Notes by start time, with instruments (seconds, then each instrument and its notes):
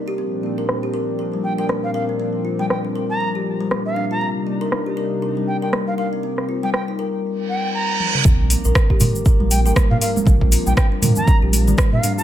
Already playing: analog synth pad C3 G3 D4 D#4
0.08 kalimba G4
0.18 analog synth pad A#2 F3 C4 D4, kalimba C4
0.43 kalimba A#3
0.58 kalimba A#4
0.69 cross-stick
0.83 kalimba G4
0.94 kalimba A#4
1.19 kalimba A#4
1.33 kalimba G3
1.44 bansuri G5
1.58 kalimba A#4, bansuri G5
1.69 kalimba A#3, cross-stick
1.84 bansuri F5
1.94 kalimba A#4, bansuri F5
2.09 kalimba C4
2.20 kalimba C4
2.45 kalimba F4
2.59 kalimba G3, bansuri G5
2.70 bansuri G5, cross-stick
2.85 kalimba D4
2.95 kalimba A#4
3.10 bansuri A#5
3.20 kalimba C4
3.35 kalimba G4
3.61 kalimba G3
3.71 kalimba A#3, cross-stick
3.86 bansuri F5
3.96 kalimba D4
4.11 kalimba F4, bansuri A#5
4.21 analog synth pad C3 G3 D4 D#4, kalimba C4
4.47 kalimba A#3
4.61 kalimba A#4
4.72 cross-stick
4.86 kalimba G4
4.97 kalimba A#4
5.22 kalimba A#4
5.37 kalimba G3
5.47 bansuri G5
5.62 kalimba A#4, bansuri G5
5.73 kalimba A#3, cross-stick
5.87 bansuri F5
5.98 kalimba A#4, bansuri F5
6.13 kalimba C4
6.23 kalimba C4, analog synth pad C4
6.38 cross-stick
6.49 kalimba F4
6.63 kalimba G3, bansuri G5
6.74 bansuri G5, cross-stick
6.88 kalimba D#4
6.99 kalimba A#4
7.24 reverse cymbal
7.49 bansuri G5
7.74 bansuri A#5
8.00 high tom
8.15 mid tom
8.25 sub bass A#1, analog synth pad F3 A#3 D4, kalimba C4, kick, sub drop, low conga, shaker
8.50 kalimba A#3, open hi-hat, shaker
8.64 sub bass A#1, kalimba A#4, shaker
8.75 kick, cross-stick, shaker
8.90 kalimba G4, kick
9.00 sub bass A#2, kalimba A#4, mid tom, open hi-hat, high conga, low conga, shaker
9.15 shaker
9.25 kalimba A#4, kick, shaker
9.40 sub bass A#1, kalimba G3, high conga
9.51 bansuri G5, open hi-hat, shaker
9.65 sub bass G#1, kalimba A#4, bansuri G5, shaker
9.76 kick, cross-stick, high conga, shaker
9.90 sub bass A#2, bansuri F5, mid tom
10.01 kalimba A#4, bansuri F5, open hi-hat, shaker
10.16 kalimba C4, high conga, shaker
10.26 sub bass A#1, kalimba C4, kick, low conga, shaker
10.41 kick
10.52 kalimba F4, open hi-hat, shaker
10.66 sub bass A#1, kalimba G3, bansuri G5, shaker
10.77 bansuri G5, kick, cross-stick, shaker
10.92 kalimba D4
11.02 sub bass A#2, kalimba A#4, mid tom, open hi-hat, high conga, low conga, shaker
11.16 bansuri A#5, low conga, shaker
11.28 kalimba C4, kick, shaker
11.42 sub bass A#1, kalimba G4
11.52 open hi-hat, high conga, shaker
11.67 sub bass G#1, kalimba G3, high conga, low conga, shaker
11.78 kick, cross-stick, shaker
11.92 sub bass A#2, bansuri F5, high conga
12.03 kalimba D4, mid tom, open hi-hat, shaker
12.18 kalimba F4, bansuri A#5, shaker